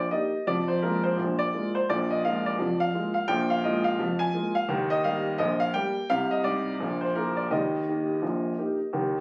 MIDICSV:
0, 0, Header, 1, 2, 480
1, 0, Start_track
1, 0, Key_signature, -3, "major"
1, 0, Tempo, 705882
1, 316, Time_signature, 2, 2, 24, 8
1, 6259, End_track
2, 0, Start_track
2, 0, Title_t, "Grand piano"
2, 0, Program_c, 0, 0
2, 0, Note_on_c, 0, 74, 67
2, 75, Note_on_c, 0, 75, 71
2, 78, Note_on_c, 0, 58, 39
2, 79, Note_off_c, 0, 74, 0
2, 81, Note_on_c, 0, 63, 33
2, 85, Note_on_c, 0, 67, 35
2, 209, Note_off_c, 0, 58, 0
2, 211, Note_off_c, 0, 63, 0
2, 214, Note_off_c, 0, 67, 0
2, 315, Note_off_c, 0, 75, 0
2, 321, Note_on_c, 0, 41, 60
2, 321, Note_on_c, 0, 74, 81
2, 323, Note_on_c, 0, 53, 68
2, 446, Control_c, 0, 64, 127
2, 462, Note_off_c, 0, 74, 0
2, 462, Note_on_c, 0, 72, 68
2, 522, Note_off_c, 0, 41, 0
2, 523, Note_off_c, 0, 53, 0
2, 557, Note_off_c, 0, 72, 0
2, 560, Note_on_c, 0, 70, 70
2, 562, Note_on_c, 0, 56, 44
2, 565, Note_on_c, 0, 58, 34
2, 566, Note_on_c, 0, 65, 44
2, 692, Note_off_c, 0, 56, 0
2, 694, Note_off_c, 0, 58, 0
2, 694, Note_off_c, 0, 65, 0
2, 701, Note_off_c, 0, 70, 0
2, 703, Note_on_c, 0, 72, 74
2, 796, Note_on_c, 0, 46, 54
2, 799, Note_on_c, 0, 34, 55
2, 803, Control_c, 0, 64, 0
2, 940, Note_off_c, 0, 72, 0
2, 942, Note_on_c, 0, 74, 81
2, 999, Note_off_c, 0, 46, 0
2, 1000, Note_off_c, 0, 34, 0
2, 1047, Note_on_c, 0, 56, 41
2, 1048, Note_on_c, 0, 58, 39
2, 1049, Note_on_c, 0, 65, 41
2, 1175, Note_off_c, 0, 56, 0
2, 1175, Note_off_c, 0, 58, 0
2, 1176, Note_off_c, 0, 65, 0
2, 1179, Note_off_c, 0, 74, 0
2, 1189, Note_on_c, 0, 72, 73
2, 1279, Note_off_c, 0, 72, 0
2, 1288, Note_on_c, 0, 34, 65
2, 1289, Note_on_c, 0, 74, 83
2, 1290, Note_on_c, 0, 46, 63
2, 1402, Control_c, 0, 64, 127
2, 1424, Note_off_c, 0, 74, 0
2, 1431, Note_on_c, 0, 75, 71
2, 1485, Note_off_c, 0, 34, 0
2, 1486, Note_off_c, 0, 46, 0
2, 1520, Note_off_c, 0, 75, 0
2, 1528, Note_on_c, 0, 77, 83
2, 1531, Note_on_c, 0, 56, 39
2, 1534, Note_on_c, 0, 58, 45
2, 1535, Note_on_c, 0, 65, 43
2, 1658, Note_off_c, 0, 56, 0
2, 1659, Note_off_c, 0, 58, 0
2, 1660, Note_off_c, 0, 65, 0
2, 1663, Note_off_c, 0, 77, 0
2, 1673, Note_on_c, 0, 74, 76
2, 1758, Control_c, 0, 64, 0
2, 1760, Note_on_c, 0, 41, 58
2, 1761, Note_on_c, 0, 53, 63
2, 1904, Note_off_c, 0, 74, 0
2, 1905, Note_on_c, 0, 77, 88
2, 1960, Note_off_c, 0, 41, 0
2, 1960, Note_off_c, 0, 53, 0
2, 2000, Note_on_c, 0, 58, 37
2, 2001, Note_on_c, 0, 56, 44
2, 2004, Note_on_c, 0, 65, 45
2, 2126, Note_off_c, 0, 77, 0
2, 2129, Note_off_c, 0, 58, 0
2, 2130, Note_off_c, 0, 56, 0
2, 2132, Note_off_c, 0, 65, 0
2, 2136, Note_on_c, 0, 77, 74
2, 2229, Note_on_c, 0, 79, 95
2, 2230, Note_on_c, 0, 34, 69
2, 2230, Note_on_c, 0, 46, 73
2, 2231, Note_off_c, 0, 77, 0
2, 2369, Control_c, 0, 64, 127
2, 2373, Note_off_c, 0, 79, 0
2, 2381, Note_on_c, 0, 77, 84
2, 2434, Note_off_c, 0, 34, 0
2, 2434, Note_off_c, 0, 46, 0
2, 2473, Note_off_c, 0, 77, 0
2, 2474, Note_on_c, 0, 75, 78
2, 2476, Note_on_c, 0, 56, 47
2, 2479, Note_on_c, 0, 58, 43
2, 2482, Note_on_c, 0, 65, 54
2, 2606, Note_off_c, 0, 56, 0
2, 2608, Note_off_c, 0, 58, 0
2, 2610, Note_off_c, 0, 65, 0
2, 2612, Note_on_c, 0, 77, 89
2, 2615, Note_off_c, 0, 75, 0
2, 2714, Note_on_c, 0, 41, 63
2, 2714, Note_on_c, 0, 53, 69
2, 2719, Control_c, 0, 64, 0
2, 2850, Note_on_c, 0, 80, 95
2, 2851, Note_off_c, 0, 77, 0
2, 2915, Note_off_c, 0, 41, 0
2, 2915, Note_off_c, 0, 53, 0
2, 2949, Note_on_c, 0, 56, 46
2, 2953, Note_on_c, 0, 58, 45
2, 2953, Note_on_c, 0, 65, 51
2, 3080, Note_off_c, 0, 56, 0
2, 3083, Note_off_c, 0, 58, 0
2, 3083, Note_off_c, 0, 65, 0
2, 3090, Note_off_c, 0, 80, 0
2, 3094, Note_on_c, 0, 77, 90
2, 3186, Note_on_c, 0, 51, 84
2, 3188, Note_off_c, 0, 77, 0
2, 3188, Note_on_c, 0, 39, 74
2, 3307, Control_c, 0, 64, 127
2, 3333, Note_on_c, 0, 75, 85
2, 3389, Note_off_c, 0, 51, 0
2, 3391, Note_off_c, 0, 39, 0
2, 3427, Note_off_c, 0, 75, 0
2, 3428, Note_on_c, 0, 55, 47
2, 3430, Note_on_c, 0, 77, 92
2, 3433, Note_on_c, 0, 67, 57
2, 3434, Note_on_c, 0, 58, 49
2, 3559, Note_off_c, 0, 55, 0
2, 3563, Note_off_c, 0, 67, 0
2, 3564, Note_off_c, 0, 58, 0
2, 3661, Note_on_c, 0, 75, 87
2, 3664, Note_on_c, 0, 46, 62
2, 3666, Note_on_c, 0, 34, 72
2, 3667, Note_off_c, 0, 77, 0
2, 3675, Control_c, 0, 64, 0
2, 3807, Note_off_c, 0, 75, 0
2, 3807, Note_on_c, 0, 77, 97
2, 3868, Note_off_c, 0, 46, 0
2, 3869, Note_off_c, 0, 34, 0
2, 3902, Note_on_c, 0, 79, 90
2, 3903, Note_on_c, 0, 55, 53
2, 3904, Note_off_c, 0, 77, 0
2, 3908, Note_on_c, 0, 58, 48
2, 3910, Note_on_c, 0, 67, 48
2, 4035, Note_off_c, 0, 55, 0
2, 4039, Note_off_c, 0, 58, 0
2, 4040, Note_off_c, 0, 67, 0
2, 4143, Note_off_c, 0, 79, 0
2, 4145, Note_on_c, 0, 77, 100
2, 4146, Note_on_c, 0, 48, 74
2, 4148, Note_on_c, 0, 36, 71
2, 4287, Control_c, 0, 64, 127
2, 4289, Note_off_c, 0, 77, 0
2, 4290, Note_on_c, 0, 75, 83
2, 4350, Note_off_c, 0, 48, 0
2, 4351, Note_off_c, 0, 36, 0
2, 4379, Note_on_c, 0, 74, 86
2, 4380, Note_on_c, 0, 55, 49
2, 4383, Note_on_c, 0, 63, 44
2, 4386, Note_off_c, 0, 75, 0
2, 4386, Note_on_c, 0, 67, 53
2, 4514, Note_off_c, 0, 55, 0
2, 4516, Note_off_c, 0, 63, 0
2, 4518, Note_off_c, 0, 67, 0
2, 4623, Note_on_c, 0, 34, 58
2, 4625, Note_on_c, 0, 46, 70
2, 4631, Control_c, 0, 64, 0
2, 4766, Note_on_c, 0, 72, 73
2, 4767, Note_off_c, 0, 74, 0
2, 4773, Control_c, 0, 64, 127
2, 4829, Note_off_c, 0, 34, 0
2, 4830, Note_off_c, 0, 46, 0
2, 4865, Note_off_c, 0, 72, 0
2, 4865, Note_on_c, 0, 58, 33
2, 4866, Note_on_c, 0, 70, 72
2, 4870, Note_on_c, 0, 65, 35
2, 4872, Note_on_c, 0, 68, 42
2, 4999, Note_off_c, 0, 58, 0
2, 5002, Note_off_c, 0, 65, 0
2, 5004, Note_off_c, 0, 68, 0
2, 5009, Note_on_c, 0, 74, 65
2, 5011, Note_off_c, 0, 70, 0
2, 5105, Note_on_c, 0, 39, 58
2, 5106, Note_on_c, 0, 75, 66
2, 5107, Note_off_c, 0, 74, 0
2, 5107, Note_on_c, 0, 51, 62
2, 5118, Control_c, 0, 64, 0
2, 5257, Control_c, 0, 64, 127
2, 5312, Note_off_c, 0, 39, 0
2, 5313, Note_off_c, 0, 51, 0
2, 5354, Note_on_c, 0, 58, 34
2, 5357, Note_on_c, 0, 63, 38
2, 5359, Note_on_c, 0, 67, 36
2, 5486, Note_off_c, 0, 58, 0
2, 5488, Note_off_c, 0, 63, 0
2, 5490, Note_off_c, 0, 67, 0
2, 5591, Note_on_c, 0, 34, 50
2, 5591, Note_on_c, 0, 46, 53
2, 5598, Control_c, 0, 64, 0
2, 5797, Note_off_c, 0, 34, 0
2, 5797, Note_off_c, 0, 46, 0
2, 5837, Note_on_c, 0, 58, 32
2, 5838, Note_on_c, 0, 63, 36
2, 5839, Note_on_c, 0, 67, 38
2, 5969, Note_off_c, 0, 58, 0
2, 5970, Note_off_c, 0, 63, 0
2, 5970, Note_off_c, 0, 67, 0
2, 6072, Note_on_c, 0, 51, 57
2, 6073, Note_on_c, 0, 39, 50
2, 6230, Control_c, 0, 64, 127
2, 6259, Note_off_c, 0, 39, 0
2, 6259, Note_off_c, 0, 51, 0
2, 6259, Note_off_c, 0, 75, 0
2, 6259, End_track
0, 0, End_of_file